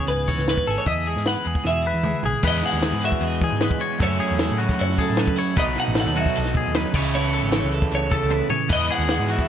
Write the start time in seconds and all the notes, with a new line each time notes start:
Already playing: E3 B3 E4 G#4
0.07 C#2 G#2 B4, closed hi-hat
0.28 E3 C#5, kick, closed hi-hat
0.38 C#2, snare
0.47 B3 B4, snare, closed hi-hat
0.58 kick
0.67 G#1 G#4 A4, closed hi-hat
0.78 C#5
0.86 E2 D#5 E5, kick, closed hi-hat
1.06 G#3 G#4, closed hi-hat
1.16 G#2, snare
1.25 B3 B4 F#5, snare, closed hi-hat
1.45 E2 G#3 G#4, closed hi-hat
1.55 kick
1.64 E2 B2 E5, snare
1.82 E3
1.87 B4
1.94 E2
2.03 G#3, mid tom
2.23 B1 G#4, floor tom
2.43 E2 E3 G#3 B3 E4 B4, kick, crash
2.47 D#5
2.62 G#4 F#5, snare, closed hi-hat
2.73 D#2
2.82 G#4, snare, closed hi-hat
2.92 G#2
3.01 E3 F#4, closed hi-hat
3.05 E5
3.12 kick
3.21 E2 G#4, closed hi-hat
3.25 D#5
3.41 E3 G#4, kick, closed hi-hat
3.52 G#2
3.60 B4, snare, closed hi-hat
3.71 kick
3.79 E2 C#5, closed hi-hat
3.99 F#2 C#3 F#3 A3 C#4 A4, kick, closed hi-hat
4.03 C#4 E4 C#5
4.20 C#4 G#4, closed hi-hat
4.31 E2
4.39 E4, snare, closed hi-hat
4.51 A2
4.58 F#3 C#4 F#4, closed hi-hat
4.69 kick, snare
4.79 F#2 E4 C#5, closed hi-hat
4.89 snare
4.97 F#3 G#4 A4, kick, closed hi-hat
5.10 A2
5.17 C#3 C#4 B4, snare, closed hi-hat
5.27 kick
5.36 E4 C#5, closed hi-hat
5.56 B1 B2 F#3 A3 D#4 B4 D#5, kick, closed hi-hat
5.75 D#4, snare, closed hi-hat
5.80 F#5
5.88 A1
5.95 A4, snare, closed hi-hat
6.00 F#5
6.06 D#2, snare
6.15 F#3 D#4 F#4 E5, closed hi-hat
6.26 kick, snare
6.35 B1 A4 D#5, closed hi-hat
6.45 snare
6.54 B2 G#4, kick, closed hi-hat
6.67 D#2
6.74 F#2 D#4 B4, snare, closed hi-hat
6.85 snare
6.93 C#2 C#3 E3 A3 E4 C#5, kick, snare, crash
7.14 E4 B4 C#5
7.33 A4, closed hi-hat
7.43 G#1
7.52 E3 E4, snare, closed hi-hat
7.64 C#2, snare
7.72 A4, closed hi-hat
7.82 kick
7.91 C#2 C#5, closed hi-hat
8.11 C#3 E4 A4, kick, closed hi-hat
8.23 C#2
8.30 E4 B4, high tom
8.50 C#3 C#5, floor tom
8.68 E2 E3 G#3 B3 E4 B4, kick, crash
8.73 D#5
8.89 G#4 F#5, closed hi-hat
8.99 D#2
9.08 G#4 F#5, snare, closed hi-hat
9.19 G#2
9.28 E3 F#4 E5, closed hi-hat
9.39 kick